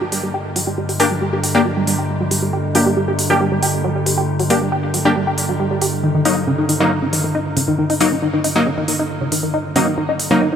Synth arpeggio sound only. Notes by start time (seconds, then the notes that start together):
0.02 F#3
0.12 G3
0.23 G3
0.34 G4
0.56 F#3
0.67 G3
0.78 G3
0.89 G4
1.11 F#3
1.22 G3
1.33 G3
1.44 G4
1.65 F#3
1.77 G3
1.87 G3
1.99 G4
2.20 F#3
2.31 G3
2.42 G3
2.53 G4
2.75 F#3
2.86 G3
2.97 G3
3.08 G4
3.30 F#3
3.41 G3
3.52 G3
3.63 G4
3.84 F#3
3.96 G3
4.06 G3
4.18 G4
4.39 F#3
4.50 G3
4.61 G3
4.72 G4
4.94 F#3
5.05 G3
5.16 G3
5.27 G4
5.49 F#3
5.60 G3
5.71 G3
5.82 G4
6.03 D#3
6.15 D#3
6.25 D#4
6.47 C#3
6.58 D#3
6.69 D#3
6.80 D#4
7.02 C#3
7.13 D#3
7.24 D#3
7.35 D#4
7.57 C#3
7.68 D#3
7.79 D#3
7.90 D#4
8.12 C#3
8.22 D#3
8.34 D#3
8.44 D#4
8.66 C#3
8.77 D#3
8.88 D#3
8.99 D#4
9.21 C#3
9.32 D#3
9.43 D#3
9.54 D#4
9.76 C#3
9.87 D#3
9.98 D#3
10.09 D#4
10.31 C#3
10.41 D#3
10.53 D#3